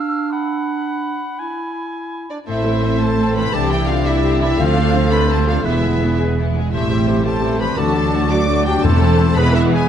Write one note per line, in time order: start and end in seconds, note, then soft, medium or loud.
0.00 1.21 D4 soft
0.00 0.32 F5 soft
0.00 0.31 E6 soft
0.32 1.41 F#5 soft
0.32 2.30 B5 soft
1.38 2.28 E4 soft
1.38 2.30 G#5 soft
2.30 2.38 D4 soft
2.30 2.37 D5 soft
2.47 3.50 A1 soft
2.47 3.50 A2 soft
2.47 3.55 A2 soft
2.47 3.49 A3 soft
2.47 2.64 A3 soft
2.47 3.49 C4 soft
2.47 2.64 C4 soft
2.47 2.99 E4 soft
2.47 2.64 A4 soft
2.47 3.54 A4 soft
2.47 3.55 C5 soft
2.47 2.99 E5 soft
2.65 2.83 E3 soft
2.65 2.82 A3 soft
2.65 2.84 E4 soft
2.65 2.83 C5 soft
2.65 3.00 C5 soft
2.83 2.99 A3 soft
2.83 3.01 C4 soft
2.83 3.01 A4 soft
2.83 3.13 B5 soft
3.00 3.18 E3 soft
3.00 3.17 A3 soft
3.00 3.19 E4 soft
3.00 3.35 A4 soft
3.00 3.19 C5 soft
3.00 3.70 C5 soft
3.00 3.36 A5 medium
3.18 3.34 A3 soft
3.18 3.34 C4 soft
3.18 3.35 C4 soft
3.18 4.23 C4 soft
3.18 3.35 A4 soft
3.35 3.53 E3 soft
3.35 3.55 E3 soft
3.35 3.53 A3 soft
3.35 3.54 E4 soft
3.35 3.55 B4 medium
3.35 3.54 C5 soft
3.35 3.53 B5 medium
3.52 4.59 C2 soft
3.52 4.60 C3 soft
3.52 3.70 D3 soft
3.52 4.59 G3 soft
3.52 3.70 C4 soft
3.52 4.59 D4 soft
3.52 3.71 E4 soft
3.52 4.59 G4 soft
3.52 3.71 G4 soft
3.52 3.71 A4 medium
3.52 4.59 D5 soft
3.52 3.71 A5 medium
3.71 3.89 E3 soft
3.71 3.89 D4 soft
3.71 3.89 E4 soft
3.71 3.90 E4 soft
3.71 3.88 G4 medium
3.71 4.06 C5 soft
3.71 3.88 G5 medium
3.87 4.07 D3 soft
3.87 4.06 C4 soft
3.87 4.07 E4 soft
3.87 4.06 F4 medium
3.87 4.07 G4 soft
3.87 4.19 B4 soft
3.87 4.05 F5 medium
4.06 4.24 E3 soft
4.06 4.25 D4 soft
4.06 4.41 E4 medium
4.06 4.24 E4 soft
4.06 4.24 E4 medium
4.06 5.67 C5 soft
4.06 4.40 E5 medium
4.24 4.40 D3 soft
4.24 4.40 C4 soft
4.24 5.29 C4 soft
4.24 4.41 E4 soft
4.24 4.41 G4 soft
4.41 4.59 E3 soft
4.41 4.61 G3 soft
4.41 4.60 D4 soft
4.41 4.59 E4 soft
4.41 4.60 E4 medium
4.41 4.59 E4 soft
4.41 4.58 E5 medium
4.58 5.63 D2 medium
4.58 5.67 D3 medium
4.58 4.76 F3 medium
4.58 5.63 A3 soft
4.58 5.63 C4 medium
4.58 4.76 C4 medium
4.58 4.76 C4 soft
4.58 5.11 F4 medium
4.58 4.76 F4 medium
4.58 5.67 A4 medium
4.58 5.67 C5 medium
4.58 5.11 F5 medium
4.76 4.94 A3 soft
4.76 4.94 D4 soft
4.76 4.95 D4 soft
4.76 5.11 A4 soft
4.76 4.95 A4 soft
4.95 5.12 F3 soft
4.95 5.12 C4 soft
4.95 5.12 F4 soft
4.95 5.24 G4 soft
5.11 5.30 A3 soft
5.11 5.29 D4 medium
5.11 5.30 D4 soft
5.11 5.30 A4 soft
5.11 5.67 A4 soft
5.11 5.28 B4 medium
5.11 5.29 B5 medium
5.29 5.46 F3 soft
5.29 5.67 C4 soft
5.29 5.46 C4 soft
5.29 5.47 C4 soft
5.29 5.47 F4 soft
5.29 5.49 A4 soft
5.29 5.47 A5 medium
5.47 5.65 A3 soft
5.47 5.67 A3 soft
5.47 5.65 D4 soft
5.47 5.66 D4 soft
5.47 5.64 F4 soft
5.47 5.66 A4 soft
5.47 5.65 F5 medium
5.64 6.52 E1 soft
5.64 6.53 E2 soft
5.64 5.82 E3 soft
5.64 6.54 G#3 soft
5.64 6.53 B3 soft
5.64 5.82 B3 soft
5.64 6.18 E4 soft
5.64 6.54 E4 soft
5.64 5.83 E4 soft
5.64 6.55 G#4 soft
5.64 6.55 B4 soft
5.64 6.18 E5 medium
5.83 6.01 G#3 soft
5.83 6.02 B3 soft
5.83 6.01 G#4 soft
5.83 6.18 G#4 soft
6.01 6.19 E3 soft
6.01 6.19 B3 soft
6.01 6.20 E4 soft
6.01 6.32 F4 soft
6.18 6.37 G#3 soft
6.18 6.37 B3 soft
6.18 6.74 G#4 soft
6.18 6.37 G#4 soft
6.36 6.53 E3 soft
6.36 6.53 B3 soft
6.36 6.74 B3 soft
6.36 6.54 E4 soft
6.55 6.73 G#3 soft
6.55 6.74 B3 soft
6.55 7.80 E4 soft
6.55 6.74 G#4 soft
6.72 7.74 A1 soft
6.72 7.74 A2 soft
6.72 7.80 A2 soft
6.72 6.89 E3 soft
6.72 7.74 G3 soft
6.72 6.89 A3 soft
6.72 7.74 C4 soft
6.72 7.21 E4 soft
6.72 6.89 E4 soft
6.72 6.89 G4 soft
6.72 6.90 C5 soft
6.72 7.22 E5 medium
6.89 7.08 G3 soft
6.89 7.08 C4 soft
6.89 7.06 G4 soft
6.89 7.08 G4 soft
6.89 7.24 G4 soft
6.89 7.07 C5 soft
7.07 7.26 E3 soft
7.07 7.25 A3 soft
7.07 7.26 A3 soft
7.07 7.25 E4 soft
7.07 7.38 F4 soft
7.07 7.24 G4 soft
7.07 7.24 C5 soft
7.25 7.43 G3 soft
7.25 7.43 C4 soft
7.25 7.40 G4 soft
7.25 7.80 G4 soft
7.25 7.43 G4 soft
7.25 7.62 A4 soft
7.25 7.43 C5 soft
7.25 7.60 A5 soft
7.40 7.59 E3 soft
7.40 7.59 A3 soft
7.40 7.79 C4 soft
7.40 7.59 E4 soft
7.40 7.58 G4 soft
7.40 7.61 C5 soft
7.59 7.80 E3 soft
7.59 7.79 G3 soft
7.59 7.78 C4 soft
7.59 7.77 G4 soft
7.59 7.78 G4 soft
7.59 7.79 B4 soft
7.59 7.77 C5 soft
7.59 7.77 B5 medium
7.77 8.83 D2 soft
7.77 8.84 D3 soft
7.77 7.95 D3 soft
7.77 8.83 F#3 soft
7.77 7.95 A3 soft
7.77 8.83 D4 soft
7.77 7.95 F#4 soft
7.77 8.30 A4 medium
7.77 7.95 D5 soft
7.77 8.30 A5 medium
7.95 8.14 F#3 soft
7.95 8.13 D4 soft
7.95 8.11 F#4 soft
7.95 8.31 F#4 soft
7.95 8.13 A4 soft
7.95 8.13 D5 soft
8.12 8.31 D3 soft
8.12 8.31 A3 soft
8.12 8.43 E4 soft
8.12 8.29 F#4 soft
8.12 8.31 F#4 soft
8.12 8.30 D5 soft
8.30 8.48 F#3 soft
8.30 8.48 D4 soft
8.30 8.47 F#4 medium
8.30 8.85 F#4 soft
8.30 8.49 A4 soft
8.30 8.65 D5 medium
8.30 8.48 D5 soft
8.30 8.65 D6 medium
8.48 8.64 D3 soft
8.48 8.64 A3 soft
8.48 8.85 D4 soft
8.48 8.65 F#4 soft
8.48 8.65 D5 soft
8.65 8.83 F#3 soft
8.65 9.38 A3 soft
8.65 8.83 D4 soft
8.65 8.83 F#4 medium
8.65 8.83 G4 medium
8.65 8.82 A4 soft
8.65 8.83 D5 soft
8.65 8.82 G5 medium
8.82 9.33 E1 medium
8.82 9.33 E2 medium
8.82 9.33 E3 medium
8.82 9.35 E3 medium
8.82 9.36 A3 medium
8.82 9.33 A3 medium
8.82 9.33 C4 medium
8.82 9.36 C4 medium
8.82 9.33 A4 medium
8.82 9.35 A4 medium
8.82 9.01 A4 medium
8.82 9.01 C5 medium
8.82 9.36 A5 medium
9.01 9.18 E4 soft
9.01 9.19 A4 medium
9.01 9.19 C5 soft
9.19 9.54 E4 soft
9.19 9.36 A4 medium
9.19 9.38 A4 soft
9.19 9.36 C5 medium
9.36 9.89 E1 medium
9.36 9.89 E2 medium
9.36 9.89 E3 medium
9.36 9.89 G#3 medium
9.36 9.89 B3 medium
9.36 9.89 E4 medium
9.36 9.53 G#4 medium
9.36 9.56 B4 medium
9.36 9.54 B4 soft
9.36 9.54 B5 medium
9.53 9.72 E4 medium
9.53 9.72 E4 soft
9.53 9.72 G#4 soft
9.53 9.73 B4 medium
9.53 9.62 E5 medium
9.72 9.89 E4 soft
9.72 9.89 G#4 medium
9.72 9.89 G#4 soft
9.72 9.89 B4 soft
9.72 9.89 G#5 medium